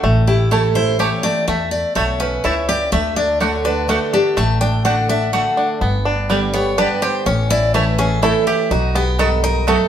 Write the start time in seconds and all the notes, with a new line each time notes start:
0.03 A1 A2 A3
0.27 E4 G4
0.51 E3 A3 C#4 E4 A4 C#5 A5
0.75 C#4 E4 C5
0.99 E3 A3 C#4 E4 G4 C#5 A5
1.23 A3 D5
1.48 E2 A3 E5
1.71 D5
1.95 B1 B2 A3 E4 C#5 A5
2.20 C#4 B4
2.44 C#2 C#3 A3 E4 C#5 A5
2.69 G4 D5
2.92 D2 D3 A3 E5
3.16 D4 D5
3.40 D3 A3 D4 F#4 C#5 D5 F#5
3.64 D4 F#4 B4
3.88 D3 A3 D4 F#4 A4 D5 F#5
4.13 D4 G4
4.37 A1 A2 A3 A5
4.61 D4 G5
4.85 D3 A3 D4 F#4 D5 F#5
5.09 D4 F#4 E5
5.33 D3 A3 D4 F#4 D5 F#5
5.57 D4
5.81 G1 G2 B3
6.05 D4
6.29 D3 G3 B3 G4 D5 G5
6.54 B3 G4 C#5
6.78 D3 G3 B3 D4 G4 B4 D5 G5
7.02 G4 C5
7.26 A1 A2 C#4 C#5
7.50 E4 D5
7.74 E3 A3 C#4 E4 B4 C#5 A5
7.98 C#4 G#4
8.22 E3 A3 C#4 E4 A4 C#5 A5
8.47 E4 G4
8.71 B1 D#4 F#4
8.95 B3 G4
9.19 G2 D#3 B3 F#4 A4 D#5 A5
9.44 D#4 A#4
9.67 F#2 A3 B3 F#4 A4 D#5 A5